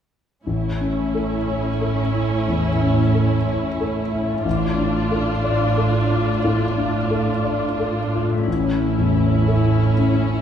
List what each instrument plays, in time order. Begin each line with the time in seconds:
0.46 grand piano A1, cello section A2, viola section C#4 E4
0.81 grand piano C#4
1.15 grand piano A4
1.47 grand piano C#5
1.81 grand piano A4
2.14 grand piano E4
2.48 grand piano E2
2.82 grand piano C#4
3.14 grand piano A4
3.48 grand piano C#5
3.80 grand piano A4
4.12 grand piano E4
4.45 grand piano A1, cello section A2, viola section D4 F4
4.78 grand piano D4
5.11 grand piano A4
5.44 grand piano D5
5.77 grand piano A4
6.11 grand piano F4
6.44 grand piano A2
6.77 grand piano D4
7.11 grand piano A4
7.44 grand piano D5
7.80 grand piano A4
8.14 grand piano F4
8.29 harp A2
8.34 harp A3
8.38 harp C#4
8.43 harp E4
8.47 grand piano A1, cello section A2, viola section C#4 E4
8.98 grand piano E2
9.48 grand piano E4 A4
9.98 grand piano C#4